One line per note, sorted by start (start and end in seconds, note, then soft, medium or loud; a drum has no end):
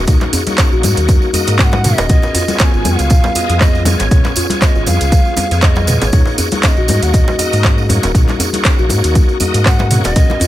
0.07 0.19 D#2 medium
0.07 0.43 A#3 medium
0.07 0.43 D#4 medium
0.07 0.20 D#4 loud
0.07 0.43 F#4 medium
0.07 0.43 C#5 medium
0.07 kick loud
0.07 closed hi-hat medium
0.07 mid tom medium
0.07 tambourine soft
0.07 djembe tone loud
0.21 clap soft
0.21 tambourine soft
0.21 djembe slap medium
0.21 muted conga medium
0.21 high conga medium
0.33 0.46 G#4 loud
0.33 open hi-hat loud
0.33 tambourine loud
0.33 djembe tone medium
0.33 djembe bass medium
0.47 1.31 A#3 medium
0.47 1.31 D#4 medium
0.47 1.31 F#4 medium
0.47 1.31 C#5 medium
0.47 closed hi-hat soft
0.47 tambourine soft
0.47 high conga medium
0.58 0.71 C#4 loud
0.58 kick loud
0.58 cross-stick loud
0.58 clap loud
0.58 closed hi-hat medium
0.58 tambourine medium
0.58 muted conga soft
0.58 djembe tone medium
0.72 0.85 A#1 medium
0.72 0.82 F#4 loud
0.72 tambourine soft
0.83 0.95 G#2 loud
0.83 open hi-hat medium
0.83 tambourine loud
0.83 muted conga medium
0.83 djembe tone medium
0.83 high conga medium
0.97 1.18 D#2 medium
0.97 1.03 A#4 medium
0.97 closed hi-hat soft
0.97 tambourine soft
1.08 kick loud
1.08 closed hi-hat medium
1.08 tambourine medium
1.08 muted conga soft
1.08 high conga medium
1.08 djembe tone loud
1.22 1.33 F#4 medium
1.22 tambourine soft
1.33 1.82 A#3 loud
1.33 1.81 D#4 medium
1.33 1.81 F#4 medium
1.33 1.46 G#4 loud
1.33 1.82 D#5 loud
1.33 open hi-hat loud
1.33 tambourine medium
1.33 djembe tone medium
1.33 high conga medium
1.33 djembe bass loud
1.47 1.95 G#2 medium
1.47 1.54 A#4 medium
1.47 closed hi-hat soft
1.47 tambourine soft
1.47 muted conga medium
1.58 1.72 C#4 loud
1.58 1.65 G#5 loud
1.58 kick loud
1.58 cross-stick loud
1.58 clap loud
1.58 tambourine soft
1.58 djembe tone medium
1.64 1.98 F#5 loud
1.72 tambourine soft
1.72 muted conga soft
1.72 djembe slap loud
1.72 high conga loud
1.84 2.07 A#3 medium
1.84 2.07 D#4 medium
1.84 2.07 F#4 medium
1.84 2.07 C#5 loud
1.84 mid tom medium
1.84 open hi-hat medium
1.84 tambourine loud
1.84 djembe tone medium
1.84 low conga loud
1.97 2.08 D#1 medium
1.97 2.04 A#4 medium
1.97 2.60 D#5 loud
1.97 closed hi-hat soft
1.97 tambourine soft
1.97 muted conga medium
1.97 djembe slap loud
2.09 2.21 C#2 loud
2.09 2.45 B3 medium
2.09 2.22 C#4 loud
2.09 2.45 F4 medium
2.09 2.45 G#4 medium
2.09 2.45 C#5 medium
2.09 kick loud
2.09 closed hi-hat medium
2.09 mid tom medium
2.09 tambourine medium
2.09 djembe tone medium
2.09 low conga medium
2.22 tambourine soft
2.22 muted conga soft
2.22 djembe slap medium
2.22 high conga medium
2.34 2.47 F4 loud
2.34 open hi-hat loud
2.34 tambourine loud
2.34 djembe tone loud
2.34 djembe bass medium
2.48 3.33 B3 medium
2.48 3.33 F4 medium
2.48 3.33 G#4 medium
2.48 3.33 C#5 medium
2.48 closed hi-hat soft
2.48 tambourine soft
2.48 high conga loud
2.58 2.73 B3 loud
2.58 2.65 A#5 loud
2.58 kick loud
2.58 cross-stick loud
2.58 clap loud
2.58 closed hi-hat medium
2.58 tambourine medium
2.58 muted conga soft
2.58 djembe tone medium
2.64 3.00 G#5 loud
2.74 2.87 G#1 loud
2.74 2.84 F4 loud
2.74 tambourine soft
2.85 2.97 F2 loud
2.85 open hi-hat medium
2.85 tambourine loud
2.85 muted conga medium
2.85 high conga medium
2.85 djembe tone medium
2.98 3.20 C#2 medium
2.98 3.05 G#4 medium
2.98 3.61 F5 loud
2.98 closed hi-hat soft
2.98 tambourine soft
3.10 kick loud
3.10 closed hi-hat medium
3.10 mid tom medium
3.10 tambourine medium
3.10 muted conga soft
3.10 djembe tone loud
3.24 3.34 F4 medium
3.24 tambourine soft
3.24 djembe slap loud
3.24 high conga medium
3.35 3.83 B3 loud
3.35 3.48 F4 loud
3.35 3.83 F4 medium
3.35 3.83 G#4 medium
3.35 3.83 D#5 loud
3.35 open hi-hat medium
3.35 tambourine medium
3.35 djembe tone medium
3.49 3.96 F2 loud
3.49 3.55 G#4 medium
3.49 closed hi-hat soft
3.49 tambourine soft
3.49 muted conga medium
3.60 3.74 B3 loud
3.60 4.00 D#5 loud
3.60 kick loud
3.60 cross-stick loud
3.60 clap medium
3.60 tambourine medium
3.60 djembe tone medium
3.75 tambourine soft
3.75 muted conga soft
3.85 4.08 B3 loud
3.85 4.08 F4 medium
3.85 4.08 G#4 medium
3.85 4.08 C#5 loud
3.85 open hi-hat medium
3.85 tambourine loud
3.85 high conga loud
3.85 djembe tone loud
3.85 djembe bass medium
3.99 4.09 G#1 medium
3.99 4.06 G#4 medium
3.99 4.62 C#5 medium
3.99 closed hi-hat soft
3.99 tambourine soft
3.99 djembe slap loud
3.99 muted conga medium
4.11 4.23 C#2 loud
4.11 4.47 B3 medium
4.11 4.24 C#4 loud
4.11 4.47 F4 medium
4.11 4.47 G#4 medium
4.11 4.47 C#5 medium
4.11 kick loud
4.11 closed hi-hat medium
4.11 mid tom medium
4.11 tambourine medium
4.11 djembe tone loud
4.24 clap soft
4.24 tambourine soft
4.24 djembe slap medium
4.24 muted conga soft
4.24 high conga medium
4.36 4.49 F4 loud
4.36 open hi-hat medium
4.36 tambourine loud
4.36 djembe tone medium
4.36 djembe bass loud
4.50 5.35 B3 medium
4.50 5.35 F4 medium
4.50 5.35 G#4 medium
4.50 5.35 C#5 medium
4.50 closed hi-hat soft
4.50 tambourine soft
4.50 high conga loud
4.61 4.75 B3 loud
4.61 4.67 F5 medium
4.61 kick loud
4.61 cross-stick loud
4.61 clap medium
4.61 closed hi-hat medium
4.61 tambourine medium
4.61 muted conga soft
4.61 djembe tone loud
4.66 4.85 D#5 medium
4.75 4.88 G#1 medium
4.75 4.86 F4 loud
4.75 tambourine soft
4.86 4.99 F2 loud
4.86 5.63 F5 loud
4.86 open hi-hat medium
4.86 tambourine medium
4.86 muted conga medium
4.86 djembe tone loud
4.86 high conga medium
5.01 5.22 C#2 medium
5.01 5.07 G#4 medium
5.01 closed hi-hat soft
5.01 tambourine soft
5.12 kick loud
5.12 closed hi-hat medium
5.12 tambourine medium
5.12 muted conga soft
5.12 high conga medium
5.12 djembe tone medium
5.25 5.36 F4 medium
5.25 tambourine soft
5.36 5.48 B3 medium
5.36 5.48 F4 medium
5.36 5.45 G#4 medium
5.36 5.48 G#4 medium
5.36 5.48 C#5 medium
5.36 open hi-hat medium
5.36 tambourine medium
5.36 djembe slap medium
5.36 djembe tone medium
5.36 high conga medium
5.36 djembe bass medium
5.51 5.98 F2 loud
5.51 5.61 G#3 medium
5.51 6.10 B3 medium
5.51 6.10 F4 medium
5.51 6.10 G#4 medium
5.51 6.10 C#5 loud
5.51 closed hi-hat soft
5.51 tambourine soft
5.51 muted conga medium
5.62 6.00 D#5 loud
5.62 kick loud
5.62 cross-stick loud
5.62 clap loud
5.62 tambourine medium
5.62 djembe tone medium
5.75 tambourine soft
5.75 muted conga soft
5.75 djembe slap loud
5.75 high conga loud
5.87 6.00 B4 medium
5.87 mid tom loud
5.87 open hi-hat medium
5.87 tambourine medium
5.87 djembe tone medium
5.87 low conga medium
6.01 6.11 G#1 medium
6.01 6.12 G#4 loud
6.01 6.34 C#5 medium
6.01 6.06 D#5 medium
6.01 closed hi-hat soft
6.01 tambourine soft
6.01 djembe slap loud
6.01 muted conga medium
6.12 6.25 D#2 loud
6.12 6.49 A#3 medium
6.12 6.25 D#4 loud
6.12 6.49 D#4 medium
6.12 6.49 F#4 medium
6.12 6.49 C#5 medium
6.12 kick loud
6.12 closed hi-hat medium
6.12 mid tom loud
6.12 tambourine soft
6.12 djembe tone medium
6.12 low conga medium
6.25 tambourine soft
6.25 djembe slap medium
6.25 muted conga soft
6.25 high conga medium
6.38 6.51 G#4 loud
6.38 open hi-hat medium
6.38 tambourine loud
6.38 djembe tone medium
6.38 djembe bass medium
6.51 7.36 A#3 medium
6.51 7.36 D#4 medium
6.51 7.36 F#4 medium
6.51 7.36 C#5 medium
6.51 closed hi-hat soft
6.51 tambourine soft
6.51 high conga loud
6.63 6.76 C#4 loud
6.63 6.69 F5 medium
6.63 kick loud
6.63 cross-stick loud
6.63 clap loud
6.63 closed hi-hat medium
6.63 tambourine medium
6.63 djembe tone medium
6.68 7.04 D#5 loud
6.77 6.90 A#1 loud
6.77 6.87 F#4 loud
6.77 tambourine soft
6.88 7.00 G#2 loud
6.88 open hi-hat medium
6.88 tambourine medium
6.88 muted conga medium
6.88 djembe tone medium
6.88 high conga loud
7.02 7.23 D#2 medium
7.02 7.09 A#4 medium
7.02 7.16 F#5 loud
7.02 closed hi-hat soft
7.02 tambourine soft
7.14 7.90 D#5 loud
7.14 kick loud
7.14 closed hi-hat medium
7.14 mid tom medium
7.14 tambourine medium
7.14 muted conga soft
7.14 djembe tone medium
7.28 7.38 F#4 medium
7.28 tambourine soft
7.28 djembe slap medium
7.28 high conga medium
7.38 7.87 A#3 loud
7.38 7.87 D#4 medium
7.38 7.87 F#4 medium
7.38 7.51 G#4 loud
7.38 7.87 D#5 loud
7.38 open hi-hat medium
7.38 tambourine medium
7.38 djembe tone medium
7.52 8.00 G#2 loud
7.52 7.59 A#4 medium
7.52 closed hi-hat soft
7.52 tambourine soft
7.52 muted conga medium
7.64 7.77 C#4 loud
7.64 kick loud
7.64 cross-stick loud
7.64 clap loud
7.64 tambourine soft
7.64 djembe tone medium
7.78 tambourine soft
7.78 muted conga soft
7.89 8.12 A#3 loud
7.89 8.12 D#4 medium
7.89 8.12 F#4 medium
7.89 8.12 C#5 loud
7.89 open hi-hat medium
7.89 tambourine medium
7.89 djembe tone medium
7.89 high conga loud
7.89 djembe bass medium
8.03 8.13 D#1 medium
8.03 8.09 A#4 medium
8.03 closed hi-hat soft
8.03 tambourine soft
8.03 muted conga soft
8.03 djembe slap loud
8.15 8.26 D#2 medium
8.15 8.50 A#3 medium
8.15 8.50 D#4 medium
8.15 8.27 D#4 loud
8.15 8.50 F#4 medium
8.15 8.50 C#5 medium
8.15 kick loud
8.15 closed hi-hat medium
8.15 mid tom loud
8.15 tambourine medium
8.15 djembe tone medium
8.28 clap soft
8.28 tambourine soft
8.28 muted conga medium
8.28 djembe slap medium
8.28 high conga medium
8.40 8.52 G#4 loud
8.40 open hi-hat medium
8.40 tambourine loud
8.40 djembe tone medium
8.40 djembe bass loud
8.53 9.38 A#3 medium
8.53 9.38 D#4 medium
8.53 9.38 F#4 medium
8.53 9.38 C#5 medium
8.53 closed hi-hat soft
8.53 tambourine soft
8.53 high conga medium
8.64 kick loud
8.64 cross-stick loud
8.64 clap loud
8.64 closed hi-hat medium
8.64 tambourine medium
8.64 muted conga soft
8.64 djembe tone medium
8.79 8.92 A#1 loud
8.79 8.89 F#4 loud
8.79 tambourine soft
8.89 9.02 G#2 loud
8.89 open hi-hat medium
8.89 tambourine medium
8.89 muted conga medium
8.89 high conga loud
8.89 djembe tone medium
9.04 9.25 D#2 medium
9.04 9.10 A#4 medium
9.04 closed hi-hat soft
9.04 tambourine soft
9.14 kick loud
9.14 closed hi-hat medium
9.14 tambourine soft
9.14 muted conga soft
9.14 high conga medium
9.14 djembe tone medium
9.29 9.39 F#4 medium
9.29 tambourine soft
9.40 9.88 A#3 loud
9.40 9.88 D#4 medium
9.40 9.88 F#4 medium
9.40 9.53 G#4 loud
9.40 9.88 D#5 loud
9.40 open hi-hat medium
9.40 tambourine medium
9.40 djembe tone medium
9.40 high conga medium
9.40 djembe bass medium
9.54 10.01 G#2 loud
9.54 9.60 A#4 medium
9.54 closed hi-hat soft
9.54 tambourine soft
9.54 muted conga soft
9.65 9.79 C#4 loud
9.65 10.02 F#5 loud
9.65 kick loud
9.65 cross-stick loud
9.65 clap loud
9.65 tambourine soft
9.65 djembe tone medium
9.79 tambourine soft
9.79 muted conga soft
9.79 djembe slap loud
9.79 high conga loud
9.90 10.13 A#3 loud
9.90 10.13 D#4 medium
9.90 10.13 F#4 medium
9.90 10.13 C#5 loud
9.90 mid tom loud
9.90 open hi-hat medium
9.90 tambourine medium
9.90 djembe tone medium
9.90 low conga medium
10.04 10.14 D#1 medium
10.04 10.11 A#4 medium
10.04 10.47 D#5 loud
10.04 closed hi-hat soft
10.04 tambourine soft
10.04 muted conga medium
10.04 djembe slap loud
10.16 10.28 C#2 loud
10.16 10.47 B3 medium
10.16 10.29 C#4 loud
10.16 10.47 F4 medium
10.16 10.47 G#4 medium
10.16 10.47 C#5 medium
10.16 kick loud
10.16 closed hi-hat medium
10.16 mid tom medium
10.16 tambourine soft
10.16 djembe tone medium
10.16 low conga medium
10.30 tambourine soft
10.30 muted conga medium
10.30 djembe slap medium
10.30 high conga medium
10.40 10.47 F4 loud
10.40 open hi-hat medium
10.40 tambourine medium
10.40 djembe tone medium
10.40 djembe bass loud